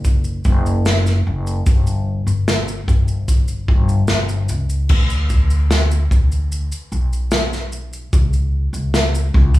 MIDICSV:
0, 0, Header, 1, 3, 480
1, 0, Start_track
1, 0, Tempo, 807537
1, 988, Time_signature, 4, 2, 24, 8
1, 5701, End_track
2, 0, Start_track
2, 0, Title_t, "Upright bass"
2, 0, Program_c, 0, 32
2, 0, Note_on_c, 0, 30, 93
2, 245, Note_off_c, 0, 30, 0
2, 268, Note_on_c, 0, 30, 97
2, 724, Note_off_c, 0, 30, 0
2, 753, Note_on_c, 0, 30, 89
2, 972, Note_off_c, 0, 30, 0
2, 990, Note_on_c, 0, 31, 98
2, 1326, Note_off_c, 0, 31, 0
2, 1347, Note_on_c, 0, 31, 83
2, 1684, Note_off_c, 0, 31, 0
2, 1711, Note_on_c, 0, 31, 95
2, 2166, Note_off_c, 0, 31, 0
2, 2191, Note_on_c, 0, 31, 90
2, 2411, Note_off_c, 0, 31, 0
2, 2429, Note_on_c, 0, 31, 79
2, 2650, Note_off_c, 0, 31, 0
2, 2671, Note_on_c, 0, 37, 94
2, 2891, Note_off_c, 0, 37, 0
2, 2912, Note_on_c, 0, 38, 103
2, 3607, Note_off_c, 0, 38, 0
2, 3633, Note_on_c, 0, 38, 85
2, 3968, Note_off_c, 0, 38, 0
2, 4112, Note_on_c, 0, 35, 86
2, 4808, Note_off_c, 0, 35, 0
2, 4834, Note_on_c, 0, 37, 87
2, 5169, Note_off_c, 0, 37, 0
2, 5188, Note_on_c, 0, 37, 86
2, 5526, Note_off_c, 0, 37, 0
2, 5554, Note_on_c, 0, 37, 105
2, 5701, Note_off_c, 0, 37, 0
2, 5701, End_track
3, 0, Start_track
3, 0, Title_t, "Drums"
3, 27, Note_on_c, 9, 82, 76
3, 28, Note_on_c, 9, 36, 82
3, 86, Note_off_c, 9, 82, 0
3, 87, Note_off_c, 9, 36, 0
3, 143, Note_on_c, 9, 82, 50
3, 203, Note_off_c, 9, 82, 0
3, 264, Note_on_c, 9, 82, 44
3, 268, Note_on_c, 9, 36, 85
3, 323, Note_off_c, 9, 82, 0
3, 328, Note_off_c, 9, 36, 0
3, 393, Note_on_c, 9, 82, 47
3, 452, Note_off_c, 9, 82, 0
3, 508, Note_on_c, 9, 82, 67
3, 511, Note_on_c, 9, 38, 102
3, 568, Note_off_c, 9, 82, 0
3, 571, Note_off_c, 9, 38, 0
3, 630, Note_on_c, 9, 38, 32
3, 632, Note_on_c, 9, 82, 44
3, 690, Note_off_c, 9, 38, 0
3, 692, Note_off_c, 9, 82, 0
3, 873, Note_on_c, 9, 82, 49
3, 932, Note_off_c, 9, 82, 0
3, 988, Note_on_c, 9, 82, 76
3, 990, Note_on_c, 9, 36, 102
3, 1048, Note_off_c, 9, 82, 0
3, 1049, Note_off_c, 9, 36, 0
3, 1110, Note_on_c, 9, 82, 54
3, 1169, Note_off_c, 9, 82, 0
3, 1352, Note_on_c, 9, 82, 50
3, 1411, Note_off_c, 9, 82, 0
3, 1473, Note_on_c, 9, 38, 112
3, 1475, Note_on_c, 9, 82, 78
3, 1533, Note_off_c, 9, 38, 0
3, 1535, Note_off_c, 9, 82, 0
3, 1593, Note_on_c, 9, 82, 55
3, 1652, Note_off_c, 9, 82, 0
3, 1712, Note_on_c, 9, 36, 89
3, 1717, Note_on_c, 9, 82, 53
3, 1772, Note_off_c, 9, 36, 0
3, 1777, Note_off_c, 9, 82, 0
3, 1830, Note_on_c, 9, 82, 52
3, 1889, Note_off_c, 9, 82, 0
3, 1951, Note_on_c, 9, 36, 83
3, 1952, Note_on_c, 9, 82, 82
3, 2011, Note_off_c, 9, 36, 0
3, 2011, Note_off_c, 9, 82, 0
3, 2068, Note_on_c, 9, 82, 55
3, 2127, Note_off_c, 9, 82, 0
3, 2190, Note_on_c, 9, 36, 97
3, 2249, Note_off_c, 9, 36, 0
3, 2311, Note_on_c, 9, 82, 44
3, 2371, Note_off_c, 9, 82, 0
3, 2423, Note_on_c, 9, 82, 66
3, 2426, Note_on_c, 9, 38, 98
3, 2482, Note_off_c, 9, 82, 0
3, 2485, Note_off_c, 9, 38, 0
3, 2548, Note_on_c, 9, 82, 48
3, 2608, Note_off_c, 9, 82, 0
3, 2667, Note_on_c, 9, 82, 56
3, 2726, Note_off_c, 9, 82, 0
3, 2791, Note_on_c, 9, 82, 53
3, 2851, Note_off_c, 9, 82, 0
3, 2908, Note_on_c, 9, 49, 93
3, 2911, Note_on_c, 9, 36, 113
3, 2967, Note_off_c, 9, 49, 0
3, 2970, Note_off_c, 9, 36, 0
3, 3031, Note_on_c, 9, 82, 51
3, 3090, Note_off_c, 9, 82, 0
3, 3148, Note_on_c, 9, 82, 58
3, 3151, Note_on_c, 9, 36, 78
3, 3207, Note_off_c, 9, 82, 0
3, 3211, Note_off_c, 9, 36, 0
3, 3271, Note_on_c, 9, 82, 51
3, 3330, Note_off_c, 9, 82, 0
3, 3392, Note_on_c, 9, 38, 110
3, 3394, Note_on_c, 9, 82, 74
3, 3451, Note_off_c, 9, 38, 0
3, 3453, Note_off_c, 9, 82, 0
3, 3514, Note_on_c, 9, 82, 54
3, 3574, Note_off_c, 9, 82, 0
3, 3633, Note_on_c, 9, 36, 91
3, 3637, Note_on_c, 9, 82, 54
3, 3692, Note_off_c, 9, 36, 0
3, 3696, Note_off_c, 9, 82, 0
3, 3755, Note_on_c, 9, 82, 51
3, 3815, Note_off_c, 9, 82, 0
3, 3875, Note_on_c, 9, 82, 80
3, 3934, Note_off_c, 9, 82, 0
3, 3994, Note_on_c, 9, 82, 56
3, 4053, Note_off_c, 9, 82, 0
3, 4114, Note_on_c, 9, 82, 44
3, 4173, Note_off_c, 9, 82, 0
3, 4237, Note_on_c, 9, 82, 44
3, 4297, Note_off_c, 9, 82, 0
3, 4346, Note_on_c, 9, 82, 62
3, 4349, Note_on_c, 9, 38, 108
3, 4406, Note_off_c, 9, 82, 0
3, 4409, Note_off_c, 9, 38, 0
3, 4474, Note_on_c, 9, 38, 31
3, 4476, Note_on_c, 9, 82, 46
3, 4534, Note_off_c, 9, 38, 0
3, 4536, Note_off_c, 9, 82, 0
3, 4590, Note_on_c, 9, 82, 58
3, 4649, Note_off_c, 9, 82, 0
3, 4714, Note_on_c, 9, 82, 52
3, 4773, Note_off_c, 9, 82, 0
3, 4833, Note_on_c, 9, 36, 111
3, 4833, Note_on_c, 9, 82, 78
3, 4892, Note_off_c, 9, 36, 0
3, 4892, Note_off_c, 9, 82, 0
3, 4953, Note_on_c, 9, 82, 52
3, 5013, Note_off_c, 9, 82, 0
3, 5193, Note_on_c, 9, 82, 53
3, 5253, Note_off_c, 9, 82, 0
3, 5313, Note_on_c, 9, 38, 113
3, 5316, Note_on_c, 9, 82, 72
3, 5373, Note_off_c, 9, 38, 0
3, 5375, Note_off_c, 9, 82, 0
3, 5437, Note_on_c, 9, 82, 59
3, 5496, Note_off_c, 9, 82, 0
3, 5554, Note_on_c, 9, 36, 97
3, 5613, Note_off_c, 9, 36, 0
3, 5673, Note_on_c, 9, 36, 78
3, 5673, Note_on_c, 9, 82, 56
3, 5701, Note_off_c, 9, 36, 0
3, 5701, Note_off_c, 9, 82, 0
3, 5701, End_track
0, 0, End_of_file